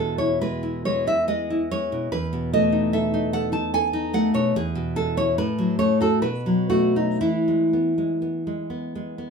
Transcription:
0.00 1.92 E2 soft
0.00 1.05 B2 soft
0.00 0.40 G#3 soft
0.00 0.18 A4 medium
0.18 0.62 E4 soft
0.18 0.41 C#5 medium
0.41 0.85 G#3 soft
0.41 0.83 B4 medium
0.63 1.06 E4 soft
0.85 1.27 G#3 soft
0.85 1.07 C#5 medium
1.07 1.49 E4 soft
1.07 1.28 E5 medium
1.28 1.71 G#3 soft
1.28 1.70 D#5 medium
1.50 2.13 E4 soft
1.71 2.13 G#3 soft
1.71 2.11 C#5 medium
1.92 2.12 B2 soft
2.12 4.33 E2 medium
2.12 2.51 B4 medium
2.33 3.52 B2 soft
2.53 3.73 A3 soft
2.53 2.91 D#5 medium
2.72 3.12 D#4 soft
2.93 3.33 A4 soft
2.93 3.31 E5 medium
3.14 3.51 D#4 soft
3.33 3.73 A4 soft
3.33 3.52 F#5 medium
3.52 3.92 D#4 soft
3.52 3.72 A5 medium
3.74 4.55 A4 medium
3.74 4.12 G#5 medium
3.93 4.55 D#4 soft
4.14 4.55 A3 soft
4.14 4.34 F#5 medium
4.34 4.54 B2 soft
4.34 4.55 C#5 medium
4.56 5.36 E2 medium
4.56 4.95 G#4 medium
4.75 5.37 B2 soft
4.96 5.37 G#3 soft
4.96 5.17 A4 medium
5.17 5.38 E4 soft
5.17 5.38 C#5 medium
5.38 6.21 A2 medium
5.38 5.78 B4 medium
5.58 5.79 F#3 soft
5.79 6.23 A3 soft
5.79 6.01 C#5 medium
6.01 6.23 F#4 soft
6.01 6.22 A4 medium
6.22 7.17 B2 medium
6.22 6.68 B4 medium
6.46 7.20 F#3 soft
6.69 7.20 A3 soft
6.69 6.95 F#4 medium
6.96 7.20 D#4 medium
7.21 9.30 E3 soft
7.21 8.70 E4 medium
7.48 7.73 G#3 soft
7.73 7.97 B3 soft
7.98 8.21 G#3 soft
8.22 8.46 B3 soft
8.47 8.94 G#3 soft
8.70 9.17 B3 soft
8.95 9.30 G#3 soft
9.18 9.30 B3 soft

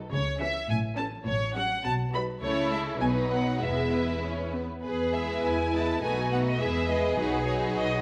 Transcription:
0.12 0.58 C#2 medium
0.12 0.57 C#3 medium
0.12 0.40 C#5 medium
0.39 0.62 E3 soft
0.39 0.62 C#4 soft
0.39 0.61 G#4 soft
0.39 0.69 E5 medium
0.69 1.15 A1 medium
0.69 1.15 A2 medium
0.69 0.77 G#5 medium
0.97 1.19 E3 soft
0.97 1.19 C#4 soft
0.97 1.19 A4 soft
0.97 1.05 A5 medium
1.26 1.73 A1 medium
1.26 1.73 A2 medium
1.26 1.55 C#5 medium
1.55 1.77 F#3 soft
1.55 1.78 C#4 soft
1.55 1.78 F#4 soft
1.55 1.84 F#5 medium
1.84 2.31 B1 soft
1.84 2.31 B2 medium
1.84 1.92 A5 medium
2.14 2.36 F#3 soft
2.14 2.36 D#4 soft
2.14 2.37 F#4 soft
2.14 2.36 B4 soft
2.14 2.22 B5 medium
2.42 2.98 C#2 soft
2.42 2.98 C#3 soft
2.42 2.70 A3 soft
2.42 2.98 E4 soft
2.42 2.98 A4 soft
2.42 2.71 C#5 medium
2.71 3.01 G#3 soft
2.71 2.80 E5 medium
3.00 3.59 B1 soft
3.00 3.61 B2 soft
3.00 3.60 F#3 soft
3.00 3.60 B3 soft
3.00 3.63 D#4 soft
3.00 3.62 B4 soft
3.00 3.08 G#5 medium
3.32 3.62 F#5 soft
3.61 4.21 E1 soft
3.61 4.64 E2 soft
3.61 4.16 G#3 soft
3.61 4.16 B3 soft
3.61 4.65 E4 soft
3.61 4.63 B4 soft
3.61 4.24 E5 medium
4.23 4.52 C#4 soft
4.54 4.85 B3 soft
4.84 5.38 E2 soft
4.84 5.41 G#4 soft
4.84 5.12 B4 medium
5.14 5.72 G#3 soft
5.14 5.72 B3 soft
5.14 5.72 E4 soft
5.14 5.72 B4 soft
5.14 5.44 E5 medium
5.43 5.96 E2 soft
5.43 6.02 E4 soft
5.43 5.73 G#5 medium
5.73 6.02 G#3 soft
5.73 6.01 B3 soft
5.73 6.02 E4 soft
5.73 6.02 B4 soft
5.73 6.03 A5 medium
6.02 6.54 B1 soft
6.02 6.30 A3 soft
6.02 6.30 B3 soft
6.02 6.30 D#4 soft
6.02 6.60 F#4 soft
6.02 6.30 B4 soft
6.02 6.31 G#5 medium
6.31 6.60 A3 soft
6.31 6.59 B3 soft
6.31 6.60 D#4 soft
6.31 6.60 B4 soft
6.31 6.38 F#5 medium
6.48 6.61 D#5 medium
6.60 7.12 E2 soft
6.60 6.87 G#3 soft
6.60 6.87 B3 soft
6.60 6.89 E4 soft
6.60 8.02 G#4 medium
6.60 6.89 B4 soft
6.60 6.90 E5 medium
6.88 7.17 G#3 soft
6.88 7.18 B3 soft
6.88 7.18 E4 soft
6.88 7.18 B4 soft
6.88 7.19 D#5 medium
7.18 7.69 B1 soft
7.18 7.44 F#3 soft
7.18 7.45 D#4 soft
7.18 7.47 F#4 soft
7.18 7.47 B4 medium
7.18 7.46 B4 soft
7.46 8.01 F#3 soft
7.46 8.02 D#4 soft
7.46 8.02 F#4 soft
7.46 8.02 B4 soft
7.46 7.54 C#5 medium
7.74 8.02 B1 soft
7.74 8.02 D#5 medium

